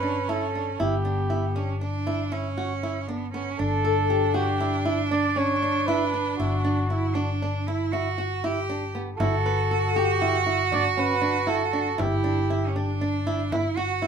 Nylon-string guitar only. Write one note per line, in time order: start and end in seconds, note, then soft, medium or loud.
0.03 0.18 D4 medium
0.29 0.44 E4 medium
0.55 0.70 D4 medium
0.80 0.95 E4 medium
1.05 1.20 D4 medium
1.30 1.45 E4 medium
1.56 1.71 D4 medium
1.81 1.96 D4 medium
2.07 2.22 E4 medium
2.32 2.47 E4 medium
2.58 2.72 F#4 medium
2.83 2.98 E4 medium
3.08 3.23 D4 medium
3.34 3.49 B3 medium
3.59 3.74 D4 medium
3.85 3.99 A4 medium
4.10 4.25 G4 medium
4.34 4.49 F#4 medium
4.60 4.75 E4 medium
4.85 5.01 E4 medium
5.11 5.26 D4 medium
5.36 5.51 C#4 medium
5.62 5.77 D4 medium
5.88 6.03 E4 medium
6.14 6.28 D4 medium
6.40 6.54 E4 medium
6.65 6.79 D4 medium
6.90 7.05 E4 medium
7.15 7.30 D4 medium
7.42 7.57 D4 medium
7.68 7.82 E4 medium
7.93 8.07 E4 medium
8.18 8.33 F#4 medium
8.44 8.58 E4 medium
8.69 8.84 D4 medium
8.95 9.09 B3 medium
9.20 9.35 E4 medium
9.46 9.60 B4 medium
9.71 9.86 A4 medium
9.96 10.11 G4 medium
10.22 10.36 E4 medium
10.46 10.61 E4 medium
10.72 10.87 D4 medium
10.97 11.12 C#4 medium
11.22 11.37 D4 medium
11.47 11.62 E4 medium
11.73 11.88 D4 medium
11.98 12.13 E4 medium
12.24 12.39 D4 medium
12.50 12.65 E4 medium
12.76 12.91 D4 medium
13.01 13.16 D4 medium
13.27 13.42 E4 medium
13.52 13.67 E4 medium
13.77 13.92 F#4 medium
14.02 14.07 E4 medium